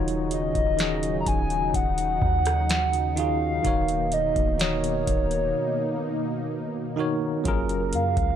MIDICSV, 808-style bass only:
0, 0, Header, 1, 2, 480
1, 0, Start_track
1, 0, Tempo, 952381
1, 1837, Time_signature, 4, 2, 24, 8
1, 4212, End_track
2, 0, Start_track
2, 0, Title_t, "808-style bass"
2, 0, Program_c, 0, 38
2, 0, Note_on_c, 0, 27, 111
2, 263, Note_off_c, 0, 27, 0
2, 278, Note_on_c, 0, 27, 101
2, 623, Note_off_c, 0, 27, 0
2, 638, Note_on_c, 0, 27, 111
2, 868, Note_off_c, 0, 27, 0
2, 878, Note_on_c, 0, 27, 110
2, 1108, Note_off_c, 0, 27, 0
2, 1117, Note_on_c, 0, 39, 108
2, 1817, Note_off_c, 0, 39, 0
2, 1838, Note_on_c, 0, 27, 107
2, 2183, Note_off_c, 0, 27, 0
2, 2198, Note_on_c, 0, 27, 107
2, 2543, Note_off_c, 0, 27, 0
2, 2557, Note_on_c, 0, 27, 105
2, 2788, Note_off_c, 0, 27, 0
2, 3757, Note_on_c, 0, 30, 104
2, 3998, Note_on_c, 0, 42, 100
2, 4005, Note_off_c, 0, 30, 0
2, 4111, Note_off_c, 0, 42, 0
2, 4117, Note_on_c, 0, 37, 105
2, 4212, Note_off_c, 0, 37, 0
2, 4212, End_track
0, 0, End_of_file